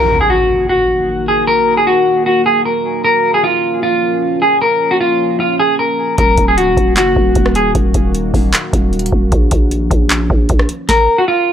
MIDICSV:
0, 0, Header, 1, 6, 480
1, 0, Start_track
1, 0, Key_signature, -6, "minor"
1, 0, Tempo, 392157
1, 1808, Time_signature, 4, 2, 24, 8
1, 14110, End_track
2, 0, Start_track
2, 0, Title_t, "Clean electric guitar"
2, 0, Program_c, 0, 27
2, 0, Note_on_c, 0, 70, 96
2, 227, Note_off_c, 0, 70, 0
2, 254, Note_on_c, 0, 68, 80
2, 342, Note_off_c, 0, 68, 0
2, 367, Note_on_c, 0, 66, 93
2, 818, Note_off_c, 0, 66, 0
2, 850, Note_on_c, 0, 66, 82
2, 1525, Note_off_c, 0, 66, 0
2, 1570, Note_on_c, 0, 68, 69
2, 1749, Note_off_c, 0, 68, 0
2, 1804, Note_on_c, 0, 70, 114
2, 2144, Note_off_c, 0, 70, 0
2, 2171, Note_on_c, 0, 68, 83
2, 2260, Note_off_c, 0, 68, 0
2, 2288, Note_on_c, 0, 66, 93
2, 2739, Note_off_c, 0, 66, 0
2, 2768, Note_on_c, 0, 66, 86
2, 2948, Note_off_c, 0, 66, 0
2, 3009, Note_on_c, 0, 68, 83
2, 3189, Note_off_c, 0, 68, 0
2, 3249, Note_on_c, 0, 70, 72
2, 3700, Note_off_c, 0, 70, 0
2, 3726, Note_on_c, 0, 70, 101
2, 4065, Note_off_c, 0, 70, 0
2, 4089, Note_on_c, 0, 68, 80
2, 4179, Note_off_c, 0, 68, 0
2, 4208, Note_on_c, 0, 65, 90
2, 4659, Note_off_c, 0, 65, 0
2, 4688, Note_on_c, 0, 65, 83
2, 5364, Note_off_c, 0, 65, 0
2, 5408, Note_on_c, 0, 68, 81
2, 5588, Note_off_c, 0, 68, 0
2, 5649, Note_on_c, 0, 70, 102
2, 5986, Note_off_c, 0, 70, 0
2, 6009, Note_on_c, 0, 66, 84
2, 6099, Note_off_c, 0, 66, 0
2, 6126, Note_on_c, 0, 65, 91
2, 6578, Note_off_c, 0, 65, 0
2, 6608, Note_on_c, 0, 65, 84
2, 6789, Note_off_c, 0, 65, 0
2, 6848, Note_on_c, 0, 68, 87
2, 7029, Note_off_c, 0, 68, 0
2, 7088, Note_on_c, 0, 70, 76
2, 7539, Note_off_c, 0, 70, 0
2, 7568, Note_on_c, 0, 70, 98
2, 7906, Note_off_c, 0, 70, 0
2, 7933, Note_on_c, 0, 68, 76
2, 8021, Note_off_c, 0, 68, 0
2, 8046, Note_on_c, 0, 66, 90
2, 8498, Note_off_c, 0, 66, 0
2, 8531, Note_on_c, 0, 66, 82
2, 9206, Note_off_c, 0, 66, 0
2, 9249, Note_on_c, 0, 68, 72
2, 9429, Note_off_c, 0, 68, 0
2, 13328, Note_on_c, 0, 70, 98
2, 13666, Note_off_c, 0, 70, 0
2, 13688, Note_on_c, 0, 66, 84
2, 13778, Note_off_c, 0, 66, 0
2, 13806, Note_on_c, 0, 65, 93
2, 14110, Note_off_c, 0, 65, 0
2, 14110, End_track
3, 0, Start_track
3, 0, Title_t, "Ambient pad"
3, 0, Program_c, 1, 92
3, 0, Note_on_c, 1, 51, 83
3, 0, Note_on_c, 1, 58, 75
3, 0, Note_on_c, 1, 66, 90
3, 3689, Note_off_c, 1, 51, 0
3, 3689, Note_off_c, 1, 66, 0
3, 3728, Note_on_c, 1, 53, 80
3, 3728, Note_on_c, 1, 61, 90
3, 7518, Note_off_c, 1, 58, 0
3, 7529, Note_off_c, 1, 53, 0
3, 7529, Note_off_c, 1, 61, 0
3, 7568, Note_on_c, 1, 58, 75
3, 7569, Note_on_c, 1, 51, 83
3, 7569, Note_on_c, 1, 66, 92
3, 11370, Note_off_c, 1, 51, 0
3, 11370, Note_off_c, 1, 66, 0
3, 11408, Note_on_c, 1, 53, 82
3, 11409, Note_on_c, 1, 61, 90
3, 13279, Note_off_c, 1, 58, 0
3, 13309, Note_off_c, 1, 53, 0
3, 13309, Note_off_c, 1, 61, 0
3, 14110, End_track
4, 0, Start_track
4, 0, Title_t, "808-style bass"
4, 0, Program_c, 2, 38
4, 7568, Note_on_c, 2, 27, 112
4, 7798, Note_off_c, 2, 27, 0
4, 7806, Note_on_c, 2, 27, 110
4, 8047, Note_on_c, 2, 25, 99
4, 8065, Note_off_c, 2, 27, 0
4, 8166, Note_on_c, 2, 27, 102
4, 8185, Note_off_c, 2, 25, 0
4, 8281, Note_off_c, 2, 27, 0
4, 8287, Note_on_c, 2, 27, 107
4, 8526, Note_on_c, 2, 30, 94
4, 8544, Note_off_c, 2, 27, 0
4, 8755, Note_off_c, 2, 30, 0
4, 8767, Note_on_c, 2, 27, 102
4, 8997, Note_off_c, 2, 27, 0
4, 9008, Note_on_c, 2, 27, 107
4, 9468, Note_off_c, 2, 27, 0
4, 9487, Note_on_c, 2, 27, 109
4, 9717, Note_off_c, 2, 27, 0
4, 9726, Note_on_c, 2, 27, 106
4, 10187, Note_off_c, 2, 27, 0
4, 10206, Note_on_c, 2, 27, 104
4, 10437, Note_off_c, 2, 27, 0
4, 10687, Note_on_c, 2, 27, 105
4, 11148, Note_off_c, 2, 27, 0
4, 11168, Note_on_c, 2, 27, 99
4, 11398, Note_off_c, 2, 27, 0
4, 11407, Note_on_c, 2, 34, 112
4, 11638, Note_off_c, 2, 34, 0
4, 11646, Note_on_c, 2, 34, 105
4, 12108, Note_off_c, 2, 34, 0
4, 12126, Note_on_c, 2, 34, 107
4, 12587, Note_off_c, 2, 34, 0
4, 12607, Note_on_c, 2, 34, 108
4, 12838, Note_off_c, 2, 34, 0
4, 12848, Note_on_c, 2, 34, 105
4, 13078, Note_off_c, 2, 34, 0
4, 14110, End_track
5, 0, Start_track
5, 0, Title_t, "Impact"
5, 0, Program_c, 3, 103
5, 0, Note_on_c, 3, 60, 86
5, 1808, Note_off_c, 3, 60, 0
5, 14110, End_track
6, 0, Start_track
6, 0, Title_t, "Drums"
6, 7566, Note_on_c, 9, 42, 76
6, 7567, Note_on_c, 9, 36, 122
6, 7689, Note_off_c, 9, 42, 0
6, 7690, Note_off_c, 9, 36, 0
6, 7803, Note_on_c, 9, 42, 89
6, 7806, Note_on_c, 9, 36, 92
6, 7925, Note_off_c, 9, 42, 0
6, 7929, Note_off_c, 9, 36, 0
6, 8051, Note_on_c, 9, 42, 74
6, 8173, Note_off_c, 9, 42, 0
6, 8286, Note_on_c, 9, 36, 104
6, 8292, Note_on_c, 9, 42, 68
6, 8409, Note_off_c, 9, 36, 0
6, 8415, Note_off_c, 9, 42, 0
6, 8528, Note_on_c, 9, 39, 121
6, 8529, Note_on_c, 9, 42, 81
6, 8651, Note_off_c, 9, 39, 0
6, 8652, Note_off_c, 9, 42, 0
6, 8767, Note_on_c, 9, 36, 97
6, 8890, Note_off_c, 9, 36, 0
6, 9001, Note_on_c, 9, 42, 74
6, 9008, Note_on_c, 9, 36, 100
6, 9123, Note_off_c, 9, 42, 0
6, 9127, Note_on_c, 9, 37, 96
6, 9131, Note_off_c, 9, 36, 0
6, 9244, Note_on_c, 9, 42, 76
6, 9249, Note_off_c, 9, 37, 0
6, 9366, Note_off_c, 9, 42, 0
6, 9486, Note_on_c, 9, 42, 79
6, 9487, Note_on_c, 9, 36, 119
6, 9609, Note_off_c, 9, 42, 0
6, 9610, Note_off_c, 9, 36, 0
6, 9723, Note_on_c, 9, 42, 85
6, 9726, Note_on_c, 9, 36, 92
6, 9845, Note_off_c, 9, 42, 0
6, 9848, Note_off_c, 9, 36, 0
6, 9970, Note_on_c, 9, 42, 75
6, 10093, Note_off_c, 9, 42, 0
6, 10207, Note_on_c, 9, 36, 105
6, 10213, Note_on_c, 9, 46, 52
6, 10329, Note_off_c, 9, 36, 0
6, 10335, Note_off_c, 9, 46, 0
6, 10448, Note_on_c, 9, 39, 120
6, 10449, Note_on_c, 9, 42, 84
6, 10570, Note_off_c, 9, 39, 0
6, 10572, Note_off_c, 9, 42, 0
6, 10687, Note_on_c, 9, 36, 98
6, 10691, Note_on_c, 9, 42, 65
6, 10810, Note_off_c, 9, 36, 0
6, 10814, Note_off_c, 9, 42, 0
6, 10928, Note_on_c, 9, 42, 44
6, 11008, Note_off_c, 9, 42, 0
6, 11008, Note_on_c, 9, 42, 61
6, 11089, Note_off_c, 9, 42, 0
6, 11089, Note_on_c, 9, 42, 78
6, 11168, Note_on_c, 9, 36, 89
6, 11211, Note_off_c, 9, 42, 0
6, 11291, Note_off_c, 9, 36, 0
6, 11406, Note_on_c, 9, 42, 80
6, 11407, Note_on_c, 9, 36, 121
6, 11529, Note_off_c, 9, 42, 0
6, 11530, Note_off_c, 9, 36, 0
6, 11642, Note_on_c, 9, 42, 86
6, 11646, Note_on_c, 9, 36, 94
6, 11765, Note_off_c, 9, 42, 0
6, 11768, Note_off_c, 9, 36, 0
6, 11890, Note_on_c, 9, 42, 74
6, 12012, Note_off_c, 9, 42, 0
6, 12126, Note_on_c, 9, 36, 105
6, 12132, Note_on_c, 9, 42, 67
6, 12249, Note_off_c, 9, 36, 0
6, 12254, Note_off_c, 9, 42, 0
6, 12367, Note_on_c, 9, 39, 120
6, 12368, Note_on_c, 9, 42, 82
6, 12489, Note_off_c, 9, 39, 0
6, 12490, Note_off_c, 9, 42, 0
6, 12607, Note_on_c, 9, 36, 97
6, 12729, Note_off_c, 9, 36, 0
6, 12839, Note_on_c, 9, 42, 73
6, 12848, Note_on_c, 9, 36, 97
6, 12962, Note_off_c, 9, 42, 0
6, 12967, Note_on_c, 9, 37, 96
6, 12970, Note_off_c, 9, 36, 0
6, 13083, Note_on_c, 9, 42, 74
6, 13089, Note_off_c, 9, 37, 0
6, 13206, Note_off_c, 9, 42, 0
6, 13326, Note_on_c, 9, 38, 91
6, 13327, Note_on_c, 9, 36, 110
6, 13448, Note_off_c, 9, 38, 0
6, 13449, Note_off_c, 9, 36, 0
6, 14110, End_track
0, 0, End_of_file